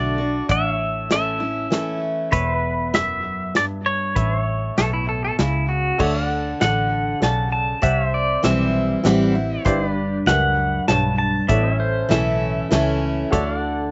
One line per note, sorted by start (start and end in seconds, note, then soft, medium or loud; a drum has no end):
0.00 0.41 B1 medium
0.00 0.18 D3 medium
0.00 0.18 A3 medium
0.00 0.18 D4 medium
0.00 0.17 F#4 medium
0.00 0.46 D5 medium
0.00 0.48 D5 medium
0.00 0.48 F#5 medium
0.18 0.49 D4 soft
0.18 0.48 F#4 medium
0.49 2.09 A1 medium
0.49 1.66 A2 medium
0.49 0.69 D5 medium
0.49 1.11 E5 medium
0.49 0.75 F#5 medium
0.49 kick medium
0.49 closed hi-hat medium
0.69 2.31 C#5 medium
0.75 2.32 E5 medium
1.10 1.40 E3 medium
1.10 1.40 A3 medium
1.10 1.41 C#4 medium
1.10 1.39 E4 medium
1.10 1.99 E5 medium
1.10 snare medium
1.10 closed hi-hat medium
1.40 1.71 C#4 soft
1.40 1.70 E4 medium
1.70 2.29 E3 medium
1.70 2.30 A3 medium
1.70 2.30 C#4 medium
1.70 2.31 E4 medium
1.70 snare medium
1.70 closed hi-hat medium
2.32 3.93 E1 medium
2.32 2.93 E2 medium
2.32 2.96 B4 medium
2.32 2.57 C#5 medium
2.32 4.14 E5 medium
2.32 kick loud
2.32 closed hi-hat medium
2.57 4.14 B4 medium
2.94 3.52 F#2 medium
2.94 3.56 E5 medium
2.94 snare medium
2.94 closed hi-hat medium
3.55 4.14 G2 medium
3.55 3.65 D5 medium
3.55 snare medium
3.55 closed hi-hat medium
3.86 5.65 C#5 medium
4.16 4.70 A1 medium
4.16 5.33 A2 medium
4.16 4.41 B4 medium
4.16 5.98 E5 medium
4.16 kick loud
4.16 closed hi-hat medium
4.41 5.97 C#5 medium
4.78 5.30 B1 medium
4.78 5.36 B2 medium
4.78 4.93 A4 medium
4.78 snare medium
4.78 closed hi-hat medium
4.93 5.08 E4 medium
5.09 5.23 A4 medium
5.25 5.39 A4 medium
5.39 5.91 C#2 medium
5.39 5.97 C#3 medium
5.39 5.68 E4 medium
5.39 snare medium
5.39 closed hi-hat medium
5.69 5.99 F#4 medium
5.98 6.53 D2 medium
5.98 6.60 D3 medium
5.98 6.49 A4 loud
5.98 6.20 C#5 medium
5.98 6.49 D5 medium
5.98 6.26 E5 medium
5.98 6.49 F#5 medium
5.98 kick loud
5.98 crash loud
6.20 7.81 D5 medium
6.26 7.82 F#5 medium
6.60 7.13 A1 medium
6.60 7.19 D3 medium
6.60 7.10 A4 medium
6.60 7.11 D5 medium
6.60 7.20 F#5 medium
6.60 7.11 F#5 medium
6.60 snare medium
6.60 closed hi-hat medium
7.20 7.74 B1 medium
7.20 7.80 C#3 medium
7.20 7.71 A4 medium
7.20 7.71 D5 medium
7.20 7.72 F#5 medium
7.20 7.51 A5 medium
7.20 snare medium
7.20 closed hi-hat medium
7.52 7.82 A5 medium
7.82 8.36 C2 medium
7.82 8.98 C3 medium
7.82 8.32 G4 medium
7.82 8.33 C5 medium
7.82 8.07 D5 medium
7.82 8.13 E5 medium
7.82 8.33 E5 medium
7.82 8.08 F#5 medium
7.82 kick loud
7.82 closed hi-hat medium
8.07 9.64 C5 medium
8.07 9.65 E5 medium
8.14 8.43 D5 medium
8.43 8.96 B1 medium
8.43 9.01 E3 medium
8.43 9.02 G3 loud
8.43 9.02 C4 medium
8.43 9.02 E4 medium
8.43 8.93 G4 medium
8.43 8.94 C5 medium
8.43 8.94 E5 medium
8.43 9.63 E5 medium
8.43 snare medium
8.43 closed hi-hat medium
9.04 9.57 A1 medium
9.04 9.34 E3 medium
9.04 9.34 G3 medium
9.04 9.35 C4 loud
9.04 9.34 E4 loud
9.04 9.54 G4 medium
9.04 9.55 C5 medium
9.04 9.55 F#5 medium
9.04 snare medium
9.04 closed hi-hat medium
9.35 9.66 C4 soft
9.35 9.65 E4 medium
9.65 10.19 G1 medium
9.65 10.26 G2 medium
9.65 9.91 E4 medium
9.65 10.15 G4 medium
9.65 10.16 B4 medium
9.65 9.85 C5 medium
9.65 10.16 D5 loud
9.65 kick loud
9.65 closed hi-hat medium
9.85 11.47 B4 medium
9.91 11.48 D4 medium
10.26 10.79 C#2 medium
10.26 10.85 F#2 medium
10.26 10.77 G4 medium
10.26 10.77 B4 medium
10.26 10.77 E5 medium
10.26 10.87 F#5 loud
10.26 snare medium
10.26 closed hi-hat medium
10.87 11.40 B1 medium
10.87 11.46 G2 medium
10.87 11.38 G4 medium
10.87 11.38 B4 medium
10.87 11.39 C#5 medium
10.87 11.17 A5 medium
10.87 snare medium
10.87 closed hi-hat medium
11.18 11.48 A5 medium
11.48 12.03 A1 medium
11.48 12.65 A2 medium
11.48 11.73 B3 medium
11.48 11.99 E4 medium
11.48 12.00 A4 medium
11.48 12.00 C#5 medium
11.48 11.74 D5 medium
11.48 11.79 E5 medium
11.48 kick loud
11.48 closed hi-hat medium
11.73 13.30 C#4 medium
11.73 13.31 E5 medium
11.80 12.10 C5 medium
12.09 12.63 B1 medium
12.09 12.68 E3 medium
12.09 12.68 A3 medium
12.09 12.69 C#4 medium
12.09 12.60 E4 medium
12.09 12.69 E4 loud
12.09 12.60 A4 medium
12.09 12.61 E5 medium
12.09 13.30 E5 medium
12.09 snare medium
12.09 closed hi-hat medium
12.71 13.24 C#2 medium
12.71 13.29 E3 medium
12.71 13.30 A3 loud
12.71 13.30 C#4 medium
12.71 13.21 E4 medium
12.71 13.31 E4 loud
12.71 13.21 A4 medium
12.71 13.22 C#5 medium
12.71 snare medium
12.71 closed hi-hat medium
13.31 13.91 D2 medium
13.31 13.91 D3 medium
13.31 13.82 F#4 medium
13.31 13.82 A4 medium
13.31 13.52 C#5 medium
13.31 13.82 D5 loud
13.31 13.58 E5 medium
13.31 kick loud
13.31 closed hi-hat medium
13.52 13.91 D5 medium
13.58 13.91 F#5 medium